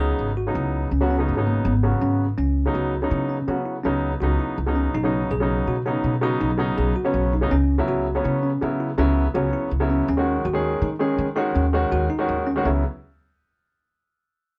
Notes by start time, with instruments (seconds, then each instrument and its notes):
Already playing: upright bass C#2, grand piano C#3 F#3 B3 D#4
0.00 tine electric piano G#4
0.19 upright bass G#1
0.37 tine electric piano F#4
0.47 grand piano C#3 F#3 B3 D#4
0.55 upright bass C#2, tine electric piano E4
0.92 upright bass C#2, tine electric piano C#4
1.01 grand piano C#3 F#3 B3 F#4
1.10 tine electric piano C#4
1.18 grand piano C#3 F#3 B3 D#4
1.29 upright bass G#1
1.37 grand piano C#3 F#3 B3 D#4
1.47 tine electric piano A#3
1.65 upright bass G#1, tine electric piano B3
1.83 grand piano C#3 F#3 B3 F#4
2.01 upright bass G#1, tine electric piano C#4
2.37 upright bass C#2, tine electric piano C#4
2.65 grand piano C#3 F#3 B3 D#4
2.74 upright bass C#2, tine electric piano F#4
3.02 grand piano C#3 F#3 B3 D#4
3.11 upright bass C#3, tine electric piano E4
3.29 tine electric piano C#4
3.48 grand piano C#3 F#3 B3 F#4, upright bass C#3
3.65 tine electric piano E4
3.84 upright bass C#2, grand piano C#3 F#3 B3 D#4, tine electric piano C#4
4.21 upright bass C#2, grand piano C#3 F#3 B3 D#4, tine electric piano F#4
4.39 tine electric piano E4
4.58 upright bass C#2
4.66 grand piano C#3 F#3 B3 D#4
4.75 tine electric piano C#4
4.94 upright bass B1, tine electric piano D#4
5.03 grand piano C#3 F#3 B3 D#4
5.31 upright bass B1, tine electric piano G#4
5.40 grand piano C#3 F#3 B3 D#4
5.67 upright bass B2, tine electric piano F#4
5.86 grand piano C#3 F#3 B3 D#4, tine electric piano D#4
6.04 upright bass B2
6.21 grand piano C#3 F#3 B3 D#4, tine electric piano F#4
6.41 upright bass B1, tine electric piano D#4
6.58 grand piano C#3 F#3 B3 D#4
6.78 upright bass B1, tine electric piano G#4
6.96 tine electric piano F#4
7.05 grand piano C#3 F#3 B3 C#4
7.14 upright bass B1
7.33 tine electric piano D#4
7.41 grand piano C#3 F#3 B3 D#4
7.51 upright bass C#2, tine electric piano C#4
7.78 grand piano C#3 F#3 B3 E4
7.88 upright bass C#2, tine electric piano F#4
8.15 grand piano C#3 F#3 B3 C#4
8.24 upright bass C#3, tine electric piano E4
8.43 tine electric piano C#4
8.61 grand piano C#3 F#3 B3 E4, upright bass C#3
8.80 tine electric piano E4
8.98 upright bass C#2, grand piano C#3 F#3 B3 E4, tine electric piano C#4
9.34 upright bass C#2, grand piano C#3 F#3 B3 C#4, tine electric piano F#4
9.54 tine electric piano E4
9.71 upright bass C#2
9.80 grand piano C#3 F#3 B3 E4
9.90 tine electric piano C#4
10.08 upright bass D#2, tine electric piano C#4
10.17 grand piano D#3 G#3 C#4 F#4
10.45 upright bass D#2, tine electric piano F#4
10.53 grand piano D#3 G#3 C#4 G#4
10.82 upright bass D#3, tine electric piano D#4
10.99 grand piano D#3 G#3 C#4 G#4, tine electric piano C#4
11.18 upright bass D#3
11.36 grand piano D#3 G#3 C#4 F#4, tine electric piano D#4
11.55 upright bass D#2, tine electric piano C#4
11.73 grand piano D#3 G#3 C#4 F#4
11.92 upright bass D#2, tine electric piano F#4
12.10 tine electric piano D#4
12.18 grand piano D#3 G#3 C#4 F#4
12.28 upright bass D#2
12.46 tine electric piano C#4
12.55 grand piano D#3 G#3 C#4 F#4
12.65 upright bass C#2, grand piano C#3 F#3 B3 E4, tine electric piano C#4